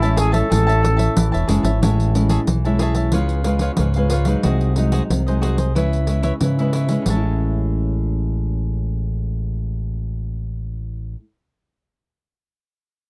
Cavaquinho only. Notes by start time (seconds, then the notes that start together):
0.02 C#5 E5 A5
0.17 G#4 C#5 E5 A5
0.32 C#5 E5 A5
0.50 G#4 C#5 E5 A5
0.67 C#5 E5 A5
0.83 muted cavaquinho stroke
0.97 C#5 E5 A5
1.32 C#5 E5 A5
1.47 G#4 C#5 E5 A5
1.63 C#5 E5 A5
1.82 C#5 E5 A5
2.30 G#4 C#5 E5 A5
2.65 C#5 E5 A5
2.80 G#4 C#5 E5 A5
2.95 C#5 E5 A5
3.12 F4 B4 C#5 F5
3.45 F4 B4 C#5 F5
3.61 F4 B4 C#5 F5
3.78 F4 B4 C#5 F5
3.96 B4 C#5 F5
4.11 F4 B4 C#5 F5
4.26 B4 C#5 F5
4.44 F#4 G#4 C5 D#5
4.92 F#4 G#4 C5 D#5
5.27 G#4 C5 D#5
5.41 F#4 G#4 C5 D#5
5.57 G#4 C5 D#5
5.75 E4 B4 C#5 E5
6.07 E4 B4 C#5 E5
6.23 E4 B4 C#5 E5
6.42 E4 B4 C#5 E5
6.59 B4 C#5 E5
6.74 E4 B4 C#5 E5
6.90 B4 C#5 E5
7.08 C#5 E5 A5